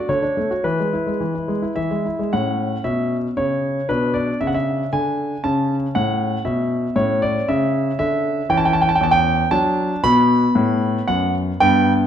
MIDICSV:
0, 0, Header, 1, 2, 480
1, 0, Start_track
1, 0, Tempo, 560748
1, 547, Time_signature, 3, 2, 24, 8
1, 1510, Tempo, 539568
1, 2470, Tempo, 519481
1, 4870, Tempo, 509338
1, 8710, Tempo, 522193
1, 11057, End_track
2, 0, Start_track
2, 0, Title_t, "Grand piano"
2, 0, Program_c, 0, 0
2, 75, Note_on_c, 0, 50, 43
2, 76, Note_on_c, 0, 73, 65
2, 186, Note_off_c, 0, 50, 0
2, 191, Note_on_c, 0, 62, 36
2, 313, Note_off_c, 0, 62, 0
2, 317, Note_on_c, 0, 57, 40
2, 434, Note_on_c, 0, 66, 38
2, 437, Note_off_c, 0, 57, 0
2, 547, Note_on_c, 0, 71, 56
2, 549, Note_on_c, 0, 52, 48
2, 551, Note_off_c, 0, 66, 0
2, 551, Note_off_c, 0, 73, 0
2, 666, Note_off_c, 0, 52, 0
2, 683, Note_on_c, 0, 56, 37
2, 798, Note_on_c, 0, 64, 39
2, 804, Note_off_c, 0, 56, 0
2, 912, Note_on_c, 0, 56, 35
2, 921, Note_off_c, 0, 64, 0
2, 1030, Note_on_c, 0, 52, 40
2, 1038, Note_off_c, 0, 56, 0
2, 1148, Note_off_c, 0, 52, 0
2, 1154, Note_on_c, 0, 64, 31
2, 1269, Note_on_c, 0, 56, 38
2, 1279, Note_off_c, 0, 64, 0
2, 1389, Note_on_c, 0, 64, 36
2, 1395, Note_off_c, 0, 56, 0
2, 1476, Note_off_c, 0, 71, 0
2, 1503, Note_on_c, 0, 76, 60
2, 1511, Note_on_c, 0, 52, 37
2, 1515, Note_off_c, 0, 64, 0
2, 1631, Note_off_c, 0, 52, 0
2, 1640, Note_on_c, 0, 56, 36
2, 1767, Note_off_c, 0, 56, 0
2, 1768, Note_on_c, 0, 64, 35
2, 1891, Note_on_c, 0, 56, 39
2, 1892, Note_off_c, 0, 64, 0
2, 1997, Note_off_c, 0, 76, 0
2, 2006, Note_off_c, 0, 56, 0
2, 2012, Note_on_c, 0, 61, 33
2, 2012, Note_on_c, 0, 78, 65
2, 2017, Note_on_c, 0, 45, 46
2, 2386, Note_off_c, 0, 45, 0
2, 2440, Note_off_c, 0, 78, 0
2, 2469, Note_on_c, 0, 76, 62
2, 2472, Note_on_c, 0, 47, 42
2, 2759, Note_off_c, 0, 76, 0
2, 2857, Note_off_c, 0, 47, 0
2, 2957, Note_on_c, 0, 49, 45
2, 2957, Note_on_c, 0, 73, 62
2, 3341, Note_off_c, 0, 49, 0
2, 3404, Note_off_c, 0, 61, 0
2, 3436, Note_on_c, 0, 71, 64
2, 3437, Note_off_c, 0, 73, 0
2, 3438, Note_on_c, 0, 47, 49
2, 3444, Note_on_c, 0, 62, 34
2, 3666, Note_on_c, 0, 74, 65
2, 3675, Note_off_c, 0, 71, 0
2, 3820, Note_off_c, 0, 47, 0
2, 3885, Note_off_c, 0, 74, 0
2, 3914, Note_on_c, 0, 76, 64
2, 3916, Note_on_c, 0, 49, 47
2, 3974, Note_on_c, 0, 78, 56
2, 3977, Note_off_c, 0, 76, 0
2, 4039, Note_off_c, 0, 78, 0
2, 4042, Note_on_c, 0, 76, 62
2, 4297, Note_off_c, 0, 49, 0
2, 4357, Note_off_c, 0, 76, 0
2, 4395, Note_on_c, 0, 80, 63
2, 4396, Note_on_c, 0, 50, 46
2, 4778, Note_off_c, 0, 50, 0
2, 4836, Note_off_c, 0, 80, 0
2, 4838, Note_off_c, 0, 62, 0
2, 4867, Note_on_c, 0, 81, 67
2, 4869, Note_on_c, 0, 61, 34
2, 4873, Note_on_c, 0, 49, 50
2, 5158, Note_off_c, 0, 81, 0
2, 5258, Note_off_c, 0, 49, 0
2, 5350, Note_on_c, 0, 78, 74
2, 5356, Note_on_c, 0, 45, 50
2, 5735, Note_off_c, 0, 45, 0
2, 5789, Note_off_c, 0, 78, 0
2, 5820, Note_on_c, 0, 47, 49
2, 5820, Note_on_c, 0, 76, 56
2, 6206, Note_off_c, 0, 47, 0
2, 6269, Note_off_c, 0, 61, 0
2, 6299, Note_on_c, 0, 45, 54
2, 6301, Note_on_c, 0, 73, 71
2, 6303, Note_off_c, 0, 76, 0
2, 6306, Note_on_c, 0, 61, 37
2, 6548, Note_off_c, 0, 73, 0
2, 6548, Note_on_c, 0, 74, 74
2, 6693, Note_off_c, 0, 45, 0
2, 6795, Note_off_c, 0, 74, 0
2, 6797, Note_on_c, 0, 76, 67
2, 6798, Note_on_c, 0, 49, 56
2, 7183, Note_off_c, 0, 49, 0
2, 7258, Note_off_c, 0, 76, 0
2, 7272, Note_on_c, 0, 76, 75
2, 7277, Note_on_c, 0, 50, 52
2, 7660, Note_off_c, 0, 50, 0
2, 7716, Note_off_c, 0, 76, 0
2, 7719, Note_off_c, 0, 61, 0
2, 7749, Note_on_c, 0, 52, 59
2, 7749, Note_on_c, 0, 61, 40
2, 7752, Note_on_c, 0, 79, 74
2, 7824, Note_on_c, 0, 81, 71
2, 7827, Note_off_c, 0, 79, 0
2, 7897, Note_on_c, 0, 79, 75
2, 7899, Note_off_c, 0, 81, 0
2, 7972, Note_off_c, 0, 79, 0
2, 7973, Note_on_c, 0, 81, 73
2, 8046, Note_off_c, 0, 81, 0
2, 8051, Note_on_c, 0, 79, 76
2, 8119, Note_on_c, 0, 81, 75
2, 8121, Note_off_c, 0, 79, 0
2, 8130, Note_off_c, 0, 52, 0
2, 8182, Note_on_c, 0, 79, 73
2, 8191, Note_off_c, 0, 81, 0
2, 8232, Note_on_c, 0, 40, 54
2, 8256, Note_on_c, 0, 81, 69
2, 8259, Note_off_c, 0, 79, 0
2, 8332, Note_on_c, 0, 79, 91
2, 8333, Note_off_c, 0, 81, 0
2, 8615, Note_off_c, 0, 40, 0
2, 8668, Note_off_c, 0, 61, 0
2, 8706, Note_on_c, 0, 62, 43
2, 8706, Note_on_c, 0, 81, 86
2, 8707, Note_off_c, 0, 79, 0
2, 8708, Note_on_c, 0, 54, 57
2, 9088, Note_off_c, 0, 54, 0
2, 9148, Note_off_c, 0, 62, 0
2, 9182, Note_off_c, 0, 81, 0
2, 9188, Note_on_c, 0, 47, 68
2, 9189, Note_on_c, 0, 59, 47
2, 9189, Note_on_c, 0, 83, 103
2, 9572, Note_off_c, 0, 47, 0
2, 9664, Note_on_c, 0, 45, 68
2, 10050, Note_off_c, 0, 45, 0
2, 10114, Note_off_c, 0, 83, 0
2, 10144, Note_on_c, 0, 78, 78
2, 10151, Note_on_c, 0, 42, 59
2, 10387, Note_off_c, 0, 78, 0
2, 10535, Note_off_c, 0, 42, 0
2, 10595, Note_off_c, 0, 59, 0
2, 10630, Note_on_c, 0, 79, 102
2, 10632, Note_on_c, 0, 59, 47
2, 10633, Note_on_c, 0, 43, 68
2, 10919, Note_off_c, 0, 79, 0
2, 11017, Note_off_c, 0, 43, 0
2, 11057, Note_off_c, 0, 59, 0
2, 11057, End_track
0, 0, End_of_file